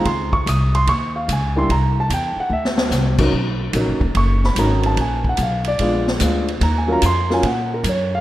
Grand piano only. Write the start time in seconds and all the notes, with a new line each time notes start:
0.06 C6
0.33 C#6
0.49 D#6
0.75 C6
0.89 C#6
1.16 F5
1.32 G#5
1.56 G3 A#3 D4 E4 C6
1.71 A#5
2.00 A5
2.14 G5
2.40 F#5
2.53 E5
3.19 F#3 A#3 C#4 D#4
3.75 F#3 A#3 C#4 D#4
4.17 C#6
4.45 B5
4.58 F#3 A#3 C#4 D#4 A#5
4.86 A5
5.01 G#5
5.29 F#5
5.43 F5
5.68 D5
5.80 G#3 B3 D4 F4
6.20 G#3 B3 D4 F4
6.63 A#5
6.78 G#5
6.88 F#3 A#3 C#4 F4
6.92 A#5
7.06 C6
7.30 F#3 A#3 C#4 F4 G#5
7.47 F#5
7.74 A#4
7.89 C#5
8.15 F5